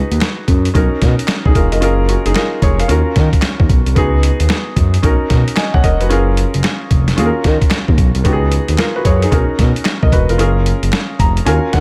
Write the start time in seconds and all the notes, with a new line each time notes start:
Already playing: D#4 F#4 G#4 B4
0.11 D#2, closed hi-hat
0.21 snare, clap, closed hi-hat
0.48 F#2, kick, closed hi-hat
0.65 closed hi-hat
0.74 B1 C#4 D#4 F#4 A#4, kick, closed hi-hat
1.02 B2, kick, snare, closed hi-hat
1.19 closed hi-hat
1.28 snare, clap, closed hi-hat
1.45 B1 D#4 G#4, kick
1.55 E1 F4 A#4, kick, closed hi-hat
1.72 F1 A#4 D#5, closed hi-hat
1.81 F#1 C#4 F4 G#4 A#4, closed hi-hat
2.09 C#4 F#4, closed hi-hat
2.25 F#1 D#4 G#4, closed hi-hat
2.35 F4 A#4, snare, clap, closed hi-hat
2.62 F1 G#4 C#5, kick, closed hi-hat
2.79 A#4 F5, closed hi-hat
2.88 D#2 C#4 F4 F#4 A#4, closed hi-hat
3.16 D#3, kick, snare, closed hi-hat
3.33 kick, closed hi-hat
3.42 snare, clap, closed hi-hat
3.60 D#2, kick
3.69 B1, kick, closed hi-hat
3.86 C2, closed hi-hat
3.95 C#2 B3 D#4 F#4 G#4, kick, closed hi-hat
4.23 closed hi-hat
4.40 D#2, closed hi-hat
4.50 snare, clap, closed hi-hat
4.76 F#2, kick, closed hi-hat
4.94 closed hi-hat
5.02 B1 C#4 D#4 F#4 A#4, kick, closed hi-hat
5.30 B2, kick, snare, closed hi-hat
5.48 closed hi-hat
5.56 D#5 G#5, snare, clap, closed hi-hat
5.74 B1 C#5 F#5, kick
5.84 E1 A#4 D#5, kick, closed hi-hat
6.01 F1 F#4 B4, closed hi-hat
6.09 F#1 C#4 F4 G#4 A#4, closed hi-hat
6.37 closed hi-hat
6.54 F#1, closed hi-hat
6.64 snare, clap, closed hi-hat
6.91 F1, kick, closed hi-hat
7.08 snare, closed hi-hat
7.17 D#2 C#4 F4 F#4 G#4, closed hi-hat
7.26 A#4
7.44 D#3, kick, snare, closed hi-hat
7.61 kick, closed hi-hat
7.70 snare, clap, closed hi-hat
7.88 D#2, kick
7.98 B1, kick, closed hi-hat
8.15 C2, closed hi-hat
8.24 C#2 B3 D#4 F#4 G4, kick, closed hi-hat
8.33 G#4
8.52 closed hi-hat
8.68 D#2, closed hi-hat
8.78 F4 A#4, snare, clap, closed hi-hat
8.96 F#4 B4
9.05 F#2 G#4 C#5, kick, closed hi-hat
9.22 D#4 G#4, closed hi-hat
9.31 B1 C#4 D#4 F#4 A#4, kick, closed hi-hat
9.59 B2, kick, snare, closed hi-hat
9.76 closed hi-hat
9.85 snare, clap, closed hi-hat
10.03 B1 A#4 D#5, kick
10.12 E1 F#4 B4, kick, closed hi-hat
10.29 F1 F4 A#4, closed hi-hat
10.38 F#1 C#4 F4 G#4 A#4, closed hi-hat
10.66 closed hi-hat
10.83 F#1, closed hi-hat
10.93 snare, clap, closed hi-hat
11.19 F1 A#5, kick, closed hi-hat
11.37 closed hi-hat
11.45 D#2 C#4 F4 F#4 A#4 G#5, closed hi-hat
11.73 D#3 F#5, kick, snare, closed hi-hat